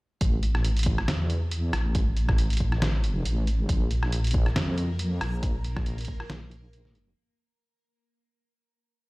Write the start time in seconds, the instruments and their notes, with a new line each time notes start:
0.21 wobble bass A1, kick, closed hi-hat
0.43 closed hi-hat
0.55 cross-stick
0.65 closed hi-hat
0.77 closed hi-hat
0.79 closed hi-hat
0.83 kick, closed hi-hat
0.98 cross-stick
1.08 wobble bass E2, snare, closed hi-hat
1.30 closed hi-hat
1.51 closed hi-hat
1.73 wobble bass A1, cross-stick, closed hi-hat
1.95 kick, closed hi-hat
2.17 closed hi-hat
2.29 kick, cross-stick
2.38 closed hi-hat
2.50 closed hi-hat
2.53 closed hi-hat
2.57 wobble bass A1, kick, closed hi-hat
2.72 cross-stick
2.82 snare, closed hi-hat
3.04 closed hi-hat
3.25 wobble bass A1, closed hi-hat
3.47 closed hi-hat
3.69 wobble bass A#1, synth texture A#3 A#4, kick, closed hi-hat
3.91 closed hi-hat
4.03 cross-stick
4.12 closed hi-hat
4.24 closed hi-hat
4.27 closed hi-hat
4.31 kick, closed hi-hat
4.46 cross-stick
4.56 wobble bass F2, snare, closed hi-hat
4.78 closed hi-hat
4.99 closed hi-hat
5.21 wobble bass A#1, cross-stick, closed hi-hat
5.43 kick, closed hi-hat
5.64 closed hi-hat
5.77 kick, cross-stick
5.86 closed hi-hat
5.98 closed hi-hat
6.01 closed hi-hat
6.05 kick, closed hi-hat
6.20 cross-stick
6.30 wobble bass A#1, snare, closed hi-hat
6.51 closed hi-hat
6.73 closed hi-hat
6.85 snare
6.95 closed hi-hat